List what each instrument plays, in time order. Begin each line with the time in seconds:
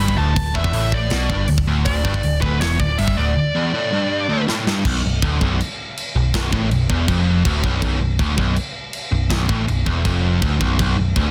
Already playing: lead electric guitar B5
0.00 picked electric bass G1, distorted electric guitar G2
0.08 kick
0.17 picked electric bass D1, distorted electric guitar D2, lead electric guitar A5
0.35 picked electric bass D1, distorted electric guitar D2, lead electric guitar A5, kick, open hi-hat
0.54 picked electric bass E1, distorted electric guitar E2, lead electric guitar E5, kick
0.64 kick
0.72 picked electric bass A1, distorted electric guitar A2, open hi-hat
0.92 lead electric guitar D5, kick
1.10 picked electric bass B1, distorted electric guitar B2, snare, open hi-hat
1.30 picked electric bass G1, distorted electric guitar G2, kick
1.48 picked electric bass D1, distorted electric guitar D2, open hi-hat
1.58 kick
1.67 picked electric bass D1, distorted electric guitar D2
1.85 picked electric bass D1, distorted electric guitar D2, lead electric guitar D5, kick, open hi-hat
2.04 picked electric bass G1, distorted electric guitar G2, kick
2.14 kick
2.23 picked electric bass D1, distorted electric guitar D2, open hi-hat
2.41 picked electric bass D1, distorted electric guitar D2, lead electric guitar B4, kick
2.60 picked electric bass E1, distorted electric guitar E2, lead electric guitar C#5, snare, open hi-hat
2.80 picked electric bass D1, distorted electric guitar D2, lead electric guitar D5, kick
2.98 picked electric bass G1, distorted electric guitar G2, lead electric guitar E5, open hi-hat
3.08 kick
3.17 picked electric bass D1, distorted electric guitar D2, lead electric guitar D5
3.36 distorted electric guitar D2
3.55 distorted electric guitar E2
3.74 distorted electric guitar A2
3.93 distorted electric guitar G2
4.29 distorted electric guitar D2
4.48 distorted electric guitar A2, snare
4.67 distorted electric guitar G2, snare
4.85 picked electric bass B0, distorted electric guitar B1, kick, crash
5.04 picked electric bass B0, distorted electric guitar B1
5.22 picked electric bass D1, distorted electric guitar D2, kick, crash
5.41 picked electric bass B0, distorted electric guitar B1, kick
5.60 crash
5.97 crash
6.16 picked electric bass B0, distorted electric guitar B1
6.34 picked electric bass B0, distorted electric guitar B1, kick, snare, crash
6.52 picked electric bass A1, distorted electric guitar A2, kick
6.71 picked electric bass B0, distorted electric guitar B1, crash
6.90 picked electric bass E1, distorted electric guitar E2, kick
7.08 picked electric bass F1, distorted electric guitar F2, kick, crash
7.45 picked electric bass D1, distorted electric guitar D2, kick, crash
7.64 picked electric bass B0, distorted electric guitar B1, kick
7.82 picked electric bass B0, distorted electric guitar B1, kick, crash
8.00 picked electric bass B0, distorted electric guitar B1
8.19 picked electric bass D1, distorted electric guitar D2, kick, crash
8.37 picked electric bass B0, distorted electric guitar B1, kick
8.56 crash
8.93 crash
9.12 picked electric bass B0, distorted electric guitar B1
9.30 picked electric bass B0, distorted electric guitar B1, kick, snare, crash
9.48 picked electric bass A1, distorted electric guitar A2, kick
9.67 picked electric bass B0, distorted electric guitar B1, crash
9.86 picked electric bass E1, distorted electric guitar E2, kick
10.04 picked electric bass F1, distorted electric guitar F2, kick, crash
10.42 picked electric bass D1, distorted electric guitar D2, kick, crash
10.60 picked electric bass B0, distorted electric guitar B1, kick
10.79 picked electric bass B0, distorted electric guitar B1, kick, crash
10.97 picked electric bass B0, distorted electric guitar B1
11.16 picked electric bass D1, distorted electric guitar D2, kick, crash